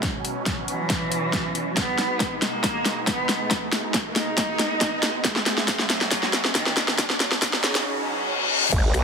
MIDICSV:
0, 0, Header, 1, 8, 480
1, 0, Start_track
1, 0, Tempo, 434783
1, 32, Time_signature, 4, 2, 24, 8
1, 9978, End_track
2, 0, Start_track
2, 0, Title_t, "Cello"
2, 0, Program_c, 0, 42
2, 751, Note_on_c, 0, 52, 107
2, 1860, Note_off_c, 0, 52, 0
2, 1952, Note_on_c, 0, 59, 108
2, 2580, Note_off_c, 0, 59, 0
2, 2672, Note_on_c, 0, 58, 102
2, 3300, Note_off_c, 0, 58, 0
2, 3391, Note_on_c, 0, 59, 98
2, 3769, Note_off_c, 0, 59, 0
2, 4592, Note_on_c, 0, 63, 107
2, 5700, Note_off_c, 0, 63, 0
2, 5791, Note_on_c, 0, 56, 109
2, 6420, Note_off_c, 0, 56, 0
2, 6511, Note_on_c, 0, 54, 103
2, 7140, Note_off_c, 0, 54, 0
2, 7231, Note_on_c, 0, 51, 98
2, 7609, Note_off_c, 0, 51, 0
2, 8431, Note_on_c, 0, 49, 100
2, 8671, Note_off_c, 0, 49, 0
2, 9978, End_track
3, 0, Start_track
3, 0, Title_t, "Supersaw synth"
3, 0, Program_c, 1, 81
3, 0, Note_on_c, 1, 47, 80
3, 32, Note_on_c, 1, 54, 73
3, 32, Note_on_c, 1, 61, 90
3, 1933, Note_off_c, 1, 54, 0
3, 1933, Note_off_c, 1, 61, 0
3, 5748, Note_off_c, 1, 47, 0
3, 5792, Note_on_c, 1, 47, 82
3, 7693, Note_off_c, 1, 47, 0
3, 7711, Note_on_c, 1, 54, 76
3, 7712, Note_on_c, 1, 47, 82
3, 7712, Note_on_c, 1, 61, 93
3, 9612, Note_off_c, 1, 47, 0
3, 9612, Note_off_c, 1, 54, 0
3, 9613, Note_off_c, 1, 61, 0
3, 9632, Note_on_c, 1, 56, 82
3, 9632, Note_on_c, 1, 59, 77
3, 9632, Note_on_c, 1, 70, 93
3, 9978, Note_off_c, 1, 56, 0
3, 9978, Note_off_c, 1, 59, 0
3, 9978, Note_off_c, 1, 70, 0
3, 9978, End_track
4, 0, Start_track
4, 0, Title_t, "Wobble bass"
4, 0, Program_c, 2, 39
4, 9632, Note_on_c, 2, 32, 97
4, 9853, Note_off_c, 2, 32, 0
4, 9872, Note_on_c, 2, 35, 96
4, 9978, Note_off_c, 2, 35, 0
4, 9978, End_track
5, 0, Start_track
5, 0, Title_t, "Reverse cymbal"
5, 0, Program_c, 3, 119
5, 8672, Note_on_c, 3, 60, 75
5, 9632, Note_off_c, 3, 60, 0
5, 9978, End_track
6, 0, Start_track
6, 0, Title_t, "Riser"
6, 0, Program_c, 4, 103
6, 0, Note_on_c, 4, 60, 78
6, 8672, Note_off_c, 4, 60, 0
6, 9978, End_track
7, 0, Start_track
7, 0, Title_t, "Sub drop"
7, 0, Program_c, 5, 103
7, 9632, Note_on_c, 5, 60, 78
7, 9978, Note_off_c, 5, 60, 0
7, 9978, End_track
8, 0, Start_track
8, 0, Title_t, "Drums"
8, 31, Note_on_c, 9, 36, 97
8, 32, Note_on_c, 9, 38, 66
8, 32, Note_on_c, 9, 42, 72
8, 142, Note_off_c, 9, 36, 0
8, 142, Note_off_c, 9, 38, 0
8, 142, Note_off_c, 9, 42, 0
8, 272, Note_on_c, 9, 42, 50
8, 382, Note_off_c, 9, 42, 0
8, 511, Note_on_c, 9, 36, 96
8, 512, Note_on_c, 9, 38, 65
8, 512, Note_on_c, 9, 42, 76
8, 622, Note_off_c, 9, 36, 0
8, 622, Note_off_c, 9, 38, 0
8, 622, Note_off_c, 9, 42, 0
8, 752, Note_on_c, 9, 42, 51
8, 862, Note_off_c, 9, 42, 0
8, 991, Note_on_c, 9, 36, 101
8, 992, Note_on_c, 9, 38, 70
8, 992, Note_on_c, 9, 42, 76
8, 1102, Note_off_c, 9, 36, 0
8, 1102, Note_off_c, 9, 38, 0
8, 1102, Note_off_c, 9, 42, 0
8, 1232, Note_on_c, 9, 42, 57
8, 1342, Note_off_c, 9, 42, 0
8, 1472, Note_on_c, 9, 36, 96
8, 1472, Note_on_c, 9, 38, 73
8, 1472, Note_on_c, 9, 42, 75
8, 1582, Note_off_c, 9, 36, 0
8, 1582, Note_off_c, 9, 38, 0
8, 1582, Note_off_c, 9, 42, 0
8, 1711, Note_on_c, 9, 42, 50
8, 1822, Note_off_c, 9, 42, 0
8, 1951, Note_on_c, 9, 36, 98
8, 1951, Note_on_c, 9, 38, 75
8, 1951, Note_on_c, 9, 42, 75
8, 2062, Note_off_c, 9, 36, 0
8, 2062, Note_off_c, 9, 38, 0
8, 2062, Note_off_c, 9, 42, 0
8, 2191, Note_on_c, 9, 38, 75
8, 2191, Note_on_c, 9, 42, 50
8, 2302, Note_off_c, 9, 38, 0
8, 2302, Note_off_c, 9, 42, 0
8, 2432, Note_on_c, 9, 36, 96
8, 2432, Note_on_c, 9, 38, 78
8, 2432, Note_on_c, 9, 42, 73
8, 2542, Note_off_c, 9, 36, 0
8, 2542, Note_off_c, 9, 38, 0
8, 2542, Note_off_c, 9, 42, 0
8, 2672, Note_on_c, 9, 38, 78
8, 2672, Note_on_c, 9, 42, 50
8, 2782, Note_off_c, 9, 38, 0
8, 2782, Note_off_c, 9, 42, 0
8, 2912, Note_on_c, 9, 36, 96
8, 2912, Note_on_c, 9, 38, 77
8, 2912, Note_on_c, 9, 42, 79
8, 3022, Note_off_c, 9, 36, 0
8, 3022, Note_off_c, 9, 38, 0
8, 3022, Note_off_c, 9, 42, 0
8, 3152, Note_on_c, 9, 38, 80
8, 3152, Note_on_c, 9, 42, 58
8, 3262, Note_off_c, 9, 38, 0
8, 3262, Note_off_c, 9, 42, 0
8, 3392, Note_on_c, 9, 36, 97
8, 3392, Note_on_c, 9, 38, 81
8, 3392, Note_on_c, 9, 42, 76
8, 3502, Note_off_c, 9, 36, 0
8, 3502, Note_off_c, 9, 38, 0
8, 3502, Note_off_c, 9, 42, 0
8, 3632, Note_on_c, 9, 38, 84
8, 3632, Note_on_c, 9, 42, 52
8, 3742, Note_off_c, 9, 38, 0
8, 3742, Note_off_c, 9, 42, 0
8, 3872, Note_on_c, 9, 36, 97
8, 3872, Note_on_c, 9, 38, 83
8, 3872, Note_on_c, 9, 42, 78
8, 3982, Note_off_c, 9, 36, 0
8, 3982, Note_off_c, 9, 38, 0
8, 3982, Note_off_c, 9, 42, 0
8, 4112, Note_on_c, 9, 38, 83
8, 4112, Note_on_c, 9, 42, 54
8, 4222, Note_off_c, 9, 38, 0
8, 4222, Note_off_c, 9, 42, 0
8, 4352, Note_on_c, 9, 36, 99
8, 4352, Note_on_c, 9, 38, 87
8, 4352, Note_on_c, 9, 42, 79
8, 4462, Note_off_c, 9, 36, 0
8, 4462, Note_off_c, 9, 38, 0
8, 4462, Note_off_c, 9, 42, 0
8, 4592, Note_on_c, 9, 38, 86
8, 4592, Note_on_c, 9, 42, 51
8, 4702, Note_off_c, 9, 38, 0
8, 4702, Note_off_c, 9, 42, 0
8, 4832, Note_on_c, 9, 36, 100
8, 4832, Note_on_c, 9, 38, 90
8, 4832, Note_on_c, 9, 42, 81
8, 4942, Note_off_c, 9, 36, 0
8, 4942, Note_off_c, 9, 38, 0
8, 4942, Note_off_c, 9, 42, 0
8, 5072, Note_on_c, 9, 38, 89
8, 5072, Note_on_c, 9, 42, 61
8, 5182, Note_off_c, 9, 38, 0
8, 5182, Note_off_c, 9, 42, 0
8, 5311, Note_on_c, 9, 36, 95
8, 5311, Note_on_c, 9, 38, 89
8, 5311, Note_on_c, 9, 42, 78
8, 5422, Note_off_c, 9, 36, 0
8, 5422, Note_off_c, 9, 38, 0
8, 5422, Note_off_c, 9, 42, 0
8, 5551, Note_on_c, 9, 38, 93
8, 5551, Note_on_c, 9, 42, 54
8, 5662, Note_off_c, 9, 38, 0
8, 5662, Note_off_c, 9, 42, 0
8, 5791, Note_on_c, 9, 36, 100
8, 5791, Note_on_c, 9, 38, 90
8, 5791, Note_on_c, 9, 42, 83
8, 5902, Note_off_c, 9, 36, 0
8, 5902, Note_off_c, 9, 38, 0
8, 5902, Note_off_c, 9, 42, 0
8, 5917, Note_on_c, 9, 38, 81
8, 6027, Note_off_c, 9, 38, 0
8, 6031, Note_on_c, 9, 38, 94
8, 6031, Note_on_c, 9, 42, 54
8, 6141, Note_off_c, 9, 38, 0
8, 6141, Note_off_c, 9, 42, 0
8, 6157, Note_on_c, 9, 38, 83
8, 6267, Note_off_c, 9, 38, 0
8, 6271, Note_on_c, 9, 36, 97
8, 6271, Note_on_c, 9, 38, 94
8, 6271, Note_on_c, 9, 42, 83
8, 6382, Note_off_c, 9, 36, 0
8, 6382, Note_off_c, 9, 38, 0
8, 6382, Note_off_c, 9, 42, 0
8, 6397, Note_on_c, 9, 38, 83
8, 6507, Note_off_c, 9, 38, 0
8, 6511, Note_on_c, 9, 38, 99
8, 6511, Note_on_c, 9, 42, 57
8, 6622, Note_off_c, 9, 38, 0
8, 6622, Note_off_c, 9, 42, 0
8, 6637, Note_on_c, 9, 38, 87
8, 6747, Note_off_c, 9, 38, 0
8, 6751, Note_on_c, 9, 36, 99
8, 6751, Note_on_c, 9, 38, 96
8, 6751, Note_on_c, 9, 42, 82
8, 6862, Note_off_c, 9, 36, 0
8, 6862, Note_off_c, 9, 38, 0
8, 6862, Note_off_c, 9, 42, 0
8, 6877, Note_on_c, 9, 38, 81
8, 6987, Note_off_c, 9, 38, 0
8, 6991, Note_on_c, 9, 38, 97
8, 6991, Note_on_c, 9, 42, 63
8, 7102, Note_off_c, 9, 38, 0
8, 7102, Note_off_c, 9, 42, 0
8, 7117, Note_on_c, 9, 38, 89
8, 7227, Note_off_c, 9, 38, 0
8, 7231, Note_on_c, 9, 36, 100
8, 7231, Note_on_c, 9, 38, 101
8, 7231, Note_on_c, 9, 42, 82
8, 7342, Note_off_c, 9, 36, 0
8, 7342, Note_off_c, 9, 38, 0
8, 7342, Note_off_c, 9, 42, 0
8, 7357, Note_on_c, 9, 38, 91
8, 7467, Note_off_c, 9, 38, 0
8, 7471, Note_on_c, 9, 38, 106
8, 7471, Note_on_c, 9, 42, 56
8, 7582, Note_off_c, 9, 38, 0
8, 7582, Note_off_c, 9, 42, 0
8, 7597, Note_on_c, 9, 38, 92
8, 7707, Note_off_c, 9, 38, 0
8, 7711, Note_on_c, 9, 36, 97
8, 7711, Note_on_c, 9, 38, 103
8, 7711, Note_on_c, 9, 42, 84
8, 7822, Note_off_c, 9, 36, 0
8, 7822, Note_off_c, 9, 38, 0
8, 7822, Note_off_c, 9, 42, 0
8, 7837, Note_on_c, 9, 38, 91
8, 7947, Note_off_c, 9, 38, 0
8, 7951, Note_on_c, 9, 38, 102
8, 7951, Note_on_c, 9, 42, 56
8, 8062, Note_off_c, 9, 38, 0
8, 8062, Note_off_c, 9, 42, 0
8, 8077, Note_on_c, 9, 38, 94
8, 8187, Note_off_c, 9, 38, 0
8, 8191, Note_on_c, 9, 36, 100
8, 8192, Note_on_c, 9, 38, 104
8, 8192, Note_on_c, 9, 42, 86
8, 8302, Note_off_c, 9, 36, 0
8, 8302, Note_off_c, 9, 38, 0
8, 8302, Note_off_c, 9, 42, 0
8, 8317, Note_on_c, 9, 38, 92
8, 8427, Note_off_c, 9, 38, 0
8, 8432, Note_on_c, 9, 38, 107
8, 8432, Note_on_c, 9, 42, 56
8, 8542, Note_off_c, 9, 38, 0
8, 8542, Note_off_c, 9, 42, 0
8, 8557, Note_on_c, 9, 38, 95
8, 8557, Note_on_c, 9, 42, 39
8, 8667, Note_off_c, 9, 38, 0
8, 8667, Note_off_c, 9, 42, 0
8, 9632, Note_on_c, 9, 36, 120
8, 9632, Note_on_c, 9, 42, 83
8, 9632, Note_on_c, 9, 49, 104
8, 9742, Note_off_c, 9, 36, 0
8, 9742, Note_off_c, 9, 42, 0
8, 9742, Note_off_c, 9, 49, 0
8, 9872, Note_on_c, 9, 26, 49
8, 9872, Note_on_c, 9, 42, 55
8, 9978, Note_off_c, 9, 26, 0
8, 9978, Note_off_c, 9, 42, 0
8, 9978, End_track
0, 0, End_of_file